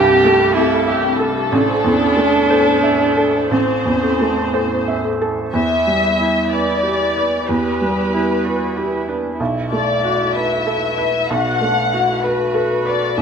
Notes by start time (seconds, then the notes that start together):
Already playing: C2 G2 G4 A4
0.08 C4
0.24 A3 A4
0.40 A4
0.54 C4 E4 G4 A4
0.71 E4
0.88 G4 E5
1.04 C4
1.18 A4
1.36 G4
1.50 A1 D4 A4
1.68 C5
1.84 E2
1.99 A4
2.16 A3 A5
2.34 A5
2.50 A4 C5
2.84 E5
2.99 A4
3.16 A4 A5
3.33 E5
3.50 A1 C4 A4 C5
3.68 C5
3.85 E2
4.03 A4
4.19 A3 A5
4.37 A5
4.53 A4 C5
4.71 C5
4.88 E5
5.04 A4
5.22 A4 A5
5.39 E5
5.53 E2 E4 E5
5.87 G3
6.20 E4
6.52 B4 D5
6.83 G4
7.17 B4
7.48 E2 G4 B4
7.82 G3
8.13 E4
8.44 F#4 B4
8.77 E4 G4
9.09 D4 B4
9.40 B1 E4
9.72 A3 D5
10.04 F#4
10.34 B4 E5
10.67 A4
10.98 B4
11.28 B1 F#4 F#5
11.60 A3 D4
11.92 E4 F#4
12.23 F#4 B4
12.55 A4
12.85 B4 D5
13.17 C2 E4 E5